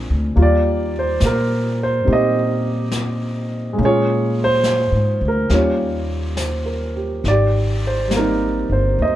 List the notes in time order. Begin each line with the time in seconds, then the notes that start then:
Already playing: G#3 C4 D4 F4 A#4
0.10 D2
0.35 D#2 G3 A#3 F4, brush sweep
0.42 G4 D5
0.99 C5
1.20 A#2, snare, hi-hat pedal
1.26 A#4
1.83 C5
2.05 A#2 C4 D#4 G4, brush sweep
2.13 G4 D#5
2.91 snare, hi-hat pedal
3.73 G#3
3.77 A#2 A#3 C#4, brush sweep
3.84 F4 G#4 C#5
4.44 C5
4.64 snare, hi-hat pedal
4.92 G#2
5.21 D2
5.28 A#4
5.49 D#2 G3 A#3 C#4 F4, brush sweep, snare
5.54 G4 C#5
6.37 C5, snare, hi-hat pedal
6.66 A#4
6.96 G4
7.24 G#1, brush sweep, snare
7.28 G4 D5
7.87 C5
8.07 G3 A#3, snare, hi-hat pedal
8.15 C4 D#4 A#4
8.70 G1 C5
8.97 D#2, brush sweep
9.02 C5 D#5